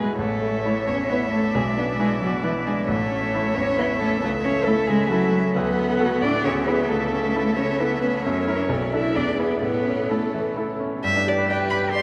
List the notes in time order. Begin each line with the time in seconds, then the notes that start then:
Already playing: E2 A2 B2 G#3 E4 G#4 B4
0.03 G#3
0.18 A1 A3 A4 C#5 E5
0.41 A3
0.65 E4 C#5
0.87 E2 C#4 C#5
1.09 B3 E4 B4 C#5
1.33 A3 A4
1.54 B1 G#3 G#4 D5
1.77 B3 D4 B4
1.98 G#3 E4 G#4 B4
2.21 B2 F#3 F#4
2.43 E3 E4 B4
2.65 G#3 D4 G#4
2.88 A1 A3 A4 C#5 E5
3.12 C#4
3.35 E4 C#5
3.54 E2 C#4 C#5
3.77 B3 E4 B4 C#5
3.98 A3 C#4 A4
4.21 C#2 A3 A4
4.42 C#4 C#5
4.64 A3 E4 A4
4.87 C#3 G#3 G#4
5.08 F#3 E4 F#4 A4
5.33 C#4
5.53 D2 B3 A4 B4 F#5
5.78 B3
6.00 F#4 A4
6.21 A2 D4 D5
6.43 D2 C#4 G#4 C#5 E5
6.65 B3 E4 G#4 B4
6.89 C#2 A3 A4
7.12 C#4
7.36 E4 A4
7.56 C#3 C#4 C#5
7.79 B3 E4 A4 B4
8.01 B3 C#4 B4
8.23 F#2 C#4 A#4 C#5
8.47 E4 A#4
8.56 D4
8.64 C#4
8.69 B1 A4 D5
8.75 B3
8.82 C#4
8.93 D4 E4 A4 E5
9.15 E2 D4 G#4 B4 D5
9.39 B3 E4 G#4 B4
9.61 A2 B3 A4 B4 C#5
9.87 C#4
10.10 A3 E4 A4
10.34 E3
10.56 E4 A4
10.80 C#4
11.02 G2 G4 B4 E5
11.17 D4
11.27 G4 D5
11.38 B4
11.48 B4 D5 G5
11.61 G5
11.70 B5
11.83 G5
11.93 G4 D5 C6